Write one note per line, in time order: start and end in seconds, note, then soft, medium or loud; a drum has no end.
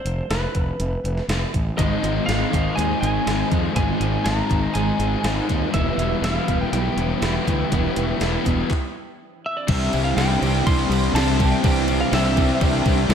0.00 0.30 C5 medium
0.05 0.20 F1 medium
0.05 closed hi-hat medium
0.30 0.45 F1 medium
0.30 1.25 B4 medium
0.30 snare loud
0.30 closed hi-hat medium
0.55 0.70 F1 medium
0.55 kick medium
0.55 closed hi-hat medium
0.79 0.94 F1 medium
0.79 closed hi-hat medium
1.04 1.19 F1 medium
1.04 closed hi-hat medium
1.18 snare soft
1.28 1.43 F1 medium
1.28 snare loud
1.28 closed hi-hat medium
1.54 1.69 A1 medium
1.54 kick medium
1.54 closed hi-hat medium
1.78 1.94 G#1 medium
1.78 2.02 G#2 loud
1.78 2.02 D#3 medium
1.78 2.27 F3 medium
1.78 2.75 G#3 medium
1.78 2.03 G#3 loud
1.78 2.26 C4 medium
1.78 2.31 D#4 loud
1.78 2.28 F4 loud
1.78 2.28 C5 medium
1.78 2.26 D#5 medium
1.78 2.29 D#5 medium
1.78 kick loud
1.78 closed hi-hat medium
2.02 2.18 G#1 medium
2.02 2.27 G#2 medium
2.02 2.27 D#3 medium
2.02 2.28 G#3 medium
2.02 2.52 C4 medium
2.02 closed hi-hat medium
2.26 2.43 G#1 medium
2.26 2.51 G#2 medium
2.26 2.51 D#3 medium
2.26 3.26 F3 medium
2.26 2.53 G#3 loud
2.26 2.76 C4 medium
2.26 2.52 F4 medium
2.26 2.51 C5 medium
2.26 2.50 D#5 medium
2.26 2.78 F5 medium
2.26 snare loud
2.26 closed hi-hat medium
2.31 2.80 D#4 medium
2.50 2.68 G#1 medium
2.50 2.75 G#2 medium
2.50 2.76 D#3 medium
2.50 2.76 G#3 medium
2.50 3.01 C4 medium
2.50 2.76 F4 medium
2.50 2.76 C5 medium
2.50 2.76 D#5 medium
2.50 kick medium
2.50 closed hi-hat medium
2.75 2.92 D#2 medium
2.75 3.01 G#2 medium
2.75 3.01 D#3 loud
2.75 3.51 G#3 medium
2.75 3.02 G#3 loud
2.75 3.25 C4 loud
2.75 3.26 F4 medium
2.75 4.01 G#4 medium
2.75 3.26 C5 loud
2.75 3.27 D#5 loud
2.75 3.00 G#5 loud
2.75 closed hi-hat medium
2.81 3.28 D#4 loud
3.01 3.17 G#1 loud
3.01 3.25 G#2 medium
3.01 3.25 D#3 medium
3.01 3.26 G#3 medium
3.01 3.50 C4 medium
3.01 3.47 G#5 loud
3.01 closed hi-hat medium
3.26 3.41 G#1 medium
3.26 3.49 G#2 medium
3.26 3.50 D#3 medium
3.26 3.74 F3 medium
3.26 3.50 G#3 loud
3.26 3.74 C4 medium
3.26 3.77 D#4 medium
3.26 3.74 F4 medium
3.26 3.75 C5 medium
3.26 3.75 D#5 medium
3.26 snare loud
3.26 closed hi-hat medium
3.50 3.66 F2 medium
3.50 3.73 G#2 medium
3.50 3.74 D#3 medium
3.50 3.74 G#3 medium
3.50 4.00 C4 medium
3.50 kick medium
3.50 closed hi-hat medium
3.74 3.91 G#1 medium
3.74 3.98 G#2 loud
3.74 3.99 D#3 loud
3.74 4.25 F3 medium
3.74 4.49 G#3 medium
3.74 4.00 G#3 loud
3.74 4.23 C4 medium
3.74 4.24 F4 medium
3.74 4.25 C5 loud
3.74 4.26 D#5 loud
3.74 4.27 G#5 loud
3.74 kick loud
3.74 closed hi-hat medium
3.78 4.27 D#4 medium
4.00 4.15 G#1 medium
4.00 4.23 G#2 medium
4.00 4.24 D#3 medium
4.00 4.24 G#3 loud
4.00 4.48 C4 medium
4.00 closed hi-hat medium
4.24 4.40 G#1 medium
4.24 4.48 G#2 medium
4.24 4.48 D#3 medium
4.24 5.22 F3 medium
4.24 4.49 G#3 medium
4.24 4.74 C4 medium
4.24 4.76 D#4 medium
4.24 4.50 F4 medium
4.24 4.49 C5 medium
4.24 4.48 D#5 medium
4.24 4.76 A#5 loud
4.24 snare loud
4.24 closed hi-hat medium
4.49 4.65 G#1 medium
4.49 4.72 G#2 medium
4.49 4.73 D#3 medium
4.49 4.73 G#3 medium
4.49 4.98 C4 medium
4.49 4.75 F4 medium
4.49 4.75 C5 medium
4.49 4.75 D#5 medium
4.49 kick medium
4.49 closed hi-hat medium
4.73 4.90 G#1 medium
4.73 4.97 G#2 medium
4.73 4.98 D#3 medium
4.73 4.98 G#3 loud
4.73 5.49 G#3 medium
4.73 5.22 C4 medium
4.73 5.25 D#4 loud
4.73 5.22 F4 loud
4.73 5.73 G#4 medium
4.73 5.23 C5 loud
4.73 5.24 D#5 loud
4.73 5.44 G#5 medium
4.73 closed hi-hat medium
4.98 5.14 G#1 medium
4.98 5.22 G#2 medium
4.98 5.23 D#3 medium
4.98 5.23 G#3 medium
4.98 5.48 C4 medium
4.98 closed hi-hat medium
5.23 5.39 G#1 medium
5.23 5.47 G#2 medium
5.23 5.47 D#3 medium
5.23 5.73 F3 medium
5.23 5.48 G#3 loud
5.23 5.72 C4 medium
5.23 5.73 D#4 medium
5.23 5.72 F4 medium
5.23 5.72 C5 medium
5.23 5.73 D#5 medium
5.23 snare loud
5.23 closed hi-hat medium
5.48 5.64 D#2 medium
5.48 5.72 G#2 medium
5.48 5.72 D#3 medium
5.48 5.72 G#3 medium
5.48 5.73 C4 medium
5.48 kick medium
5.48 closed hi-hat medium
5.72 5.89 E1 medium
5.72 5.97 E2 medium
5.72 5.97 B2 loud
5.72 6.72 E3 medium
5.72 5.98 E3 loud
5.72 6.22 G3 medium
5.72 6.22 B3 medium
5.72 6.23 B3 medium
5.72 6.23 E4 loud
5.72 6.25 B4 loud
5.72 6.24 E5 medium
5.72 kick loud
5.72 closed hi-hat medium
5.97 6.13 E1 medium
5.97 6.22 E2 medium
5.97 6.22 B2 medium
5.97 6.23 E3 loud
5.97 7.22 E4 medium
5.97 closed hi-hat medium
6.21 6.37 E1 medium
6.21 6.46 E2 medium
6.21 6.47 B2 medium
6.21 6.48 E3 medium
6.21 6.73 G3 medium
6.21 6.50 B3 medium
6.21 6.47 B3 medium
6.21 6.49 E4 medium
6.21 6.48 B4 medium
6.21 6.61 F5 medium
6.21 snare loud
6.21 closed hi-hat medium
6.47 6.63 E1 medium
6.47 6.71 E2 medium
6.47 6.72 B2 medium
6.47 6.72 E3 loud
6.47 6.96 B3 medium
6.47 6.72 B3 medium
6.47 6.73 E4 medium
6.47 6.73 B4 medium
6.47 kick medium
6.47 closed hi-hat medium
6.61 6.72 G5 medium
6.72 6.87 B1 medium
6.72 6.96 E2 loud
6.72 6.97 B2 medium
6.72 7.46 E3 medium
6.72 6.98 E3 loud
6.72 7.21 G3 medium
6.72 7.22 B3 medium
6.72 7.22 E4 medium
6.72 7.96 G4 medium
6.72 7.23 B4 medium
6.72 9.15 G5 medium
6.72 closed hi-hat medium
6.96 7.11 E1 medium
6.96 7.20 E2 medium
6.96 7.21 B2 medium
6.96 7.22 E3 medium
6.96 7.21 B3 medium
6.96 closed hi-hat medium
7.22 7.37 E1 medium
7.22 7.45 E2 medium
7.22 7.46 B2 medium
7.22 7.46 E3 medium
7.22 7.70 G3 medium
7.22 7.46 B3 medium
7.22 7.70 B3 medium
7.22 7.71 E4 medium
7.22 7.72 B4 medium
7.22 snare loud
7.22 closed hi-hat medium
7.46 7.62 D2 medium
7.46 7.70 E2 medium
7.46 7.70 B2 medium
7.46 7.71 E3 medium
7.46 7.70 B3 medium
7.46 kick medium
7.46 closed hi-hat medium
7.71 7.87 E1 medium
7.71 7.95 E2 medium
7.71 7.95 B2 loud
7.71 8.45 E3 loud
7.71 7.96 E3 medium
7.71 8.20 G3 medium
7.71 8.19 B3 medium
7.71 8.20 B3 medium
7.71 8.21 E4 medium
7.71 8.21 B4 loud
7.71 kick loud
7.71 closed hi-hat medium
7.96 8.11 E1 medium
7.96 8.20 E2 medium
7.96 8.20 B2 medium
7.96 8.21 E3 loud
7.96 8.70 E4 medium
7.96 closed hi-hat medium
8.20 8.35 E1 medium
8.20 8.44 E2 medium
8.20 8.45 B2 medium
8.20 8.46 E3 medium
8.20 8.68 G3 medium
8.20 8.44 B3 medium
8.20 8.46 B3 medium
8.20 8.45 E4 medium
8.20 8.44 B4 medium
8.20 snare medium
8.20 closed hi-hat medium
8.45 8.61 E1 medium
8.45 8.68 E2 medium
8.45 8.69 B2 medium
8.45 8.69 E3 medium
8.45 8.70 B3 medium
8.45 8.69 B3 medium
8.45 8.69 E4 medium
8.45 8.69 B4 medium
8.45 kick medium
8.45 closed hi-hat medium
8.70 kick medium
8.70 clap medium
9.46 9.57 E5 medium
9.57 9.69 D5 medium
9.68 9.88 C2 medium
9.68 10.17 C3 medium
9.68 10.17 C3 loud
9.68 10.17 E3 loud
9.68 9.92 E3 medium
9.68 10.18 G3 loud
9.68 10.18 C4 loud
9.68 9.95 C4 medium
9.68 9.94 D4 loud
9.68 9.94 E4 loud
9.68 9.93 G4 loud
9.68 10.04 E5 loud
9.68 kick loud
9.68 crash loud
9.68 crash medium
9.93 10.12 C2 medium
9.93 11.15 E3 medium
9.93 10.18 C4 medium
9.93 10.19 D4 medium
9.93 10.19 E4 medium
9.93 10.20 G4 medium
9.93 crash medium
10.04 10.16 F5 medium
10.16 10.36 C2 medium
10.16 10.72 C3 medium
10.16 10.41 C3 medium
10.16 10.67 E3 loud
10.16 10.41 G3 medium
10.16 10.43 C4 loud
10.16 10.42 C4 medium
10.16 10.67 D4 medium
10.16 10.43 D4 loud
10.16 10.42 E4 loud
10.16 10.41 G4 loud
10.16 10.67 G5 loud
10.16 snare loud
10.16 crash medium
10.41 10.60 C2 medium
10.41 10.64 C3 medium
10.41 10.65 G3 loud
10.41 10.66 C4 loud
10.41 10.66 C4 medium
10.41 10.68 D4 medium
10.41 11.15 E4 medium
10.41 10.68 G4 medium
10.41 11.39 G4 medium
10.41 crash medium
10.66 10.85 C2 loud
10.66 11.14 C3 medium
10.66 10.91 E3 medium
10.66 11.14 G3 medium
10.66 11.15 C4 loud
10.66 10.91 C4 medium
10.66 11.16 D4 medium
10.66 10.91 D4 medium
10.66 10.89 G4 medium
10.66 11.15 C6 loud
10.66 kick loud
10.66 crash medium
10.89 11.09 C2 loud
10.89 11.41 C3 medium
10.89 11.13 E3 medium
10.89 11.14 C4 medium
10.89 12.13 C4 medium
10.89 11.15 D4 medium
10.89 11.15 G4 medium
10.89 crash medium
11.13 11.52 C2 loud
11.13 11.38 C3 medium
11.13 11.62 E3 medium
11.13 11.38 G3 medium
11.13 11.40 C4 medium
11.13 11.39 C4 medium
11.13 11.40 D4 medium
11.13 12.12 D4 medium
11.13 11.39 E4 medium
11.13 11.37 G4 medium
11.13 11.53 A5 loud
11.13 snare loud
11.13 crash loud
11.39 11.62 C3 medium
11.39 11.63 G3 loud
11.39 11.63 C4 loud
11.39 11.62 C4 medium
11.39 11.64 D4 medium
11.39 11.63 E4 medium
11.39 11.63 G4 medium
11.39 12.36 G4 medium
11.39 kick medium
11.39 crash medium
11.51 11.64 G5 medium
11.63 12.02 C2 medium
11.63 12.10 C3 medium
11.63 12.12 C3 medium
11.63 12.11 E3 loud
11.63 11.87 E3 medium
11.63 12.12 G3 loud
11.63 11.87 C4 medium
11.63 12.13 C4 loud
11.63 11.87 D4 loud
11.63 11.88 E4 loud
11.63 11.85 G4 loud
11.63 12.00 G5 loud
11.63 kick loud
11.63 crash loud
11.86 13.10 E3 medium
11.86 12.11 C4 medium
11.86 12.12 D4 medium
11.86 12.12 E4 medium
11.86 12.12 G4 medium
11.86 crash medium
12.01 12.13 F5 medium
12.01 snare soft
12.11 12.50 C2 loud
12.11 12.60 C3 medium
12.11 12.35 C3 medium
12.11 12.59 E3 loud
12.11 12.36 G3 medium
12.11 12.36 C4 loud
12.11 12.36 D4 medium
12.11 12.61 D4 medium
12.11 12.36 E4 loud
12.11 12.34 G4 loud
12.11 12.59 E5 medium
12.11 snare loud
12.11 crash medium
12.35 12.60 C3 loud
12.35 12.60 G3 medium
12.35 12.60 C4 medium
12.35 12.61 C4 loud
12.35 12.62 D4 medium
12.35 13.09 E4 medium
12.35 12.61 G4 medium
12.35 13.14 G4 medium
12.35 kick medium
12.35 crash medium
12.60 12.80 C2 loud
12.60 13.08 C3 loud
12.60 12.84 E3 medium
12.60 13.09 G3 loud
12.60 12.84 C4 medium
12.60 13.09 C4 loud
12.60 13.10 D4 medium
12.60 12.84 D4 medium
12.60 12.83 G4 loud
12.60 kick loud
12.60 crash medium
12.84 13.04 C2 medium
12.84 13.14 C3 medium
12.84 13.07 E3 medium
12.84 13.08 C4 medium
12.84 13.14 C4 medium
12.84 13.10 D4 medium
12.84 13.09 G4 medium
12.84 kick medium
12.84 crash medium
13.08 13.14 C2 loud
13.08 13.14 C3 medium
13.08 13.14 E3 medium
13.08 13.14 G3 medium
13.08 13.14 C4 medium
13.08 13.14 D4 medium
13.08 13.14 E4 medium
13.08 13.14 G4 medium
13.08 snare loud
13.08 crash medium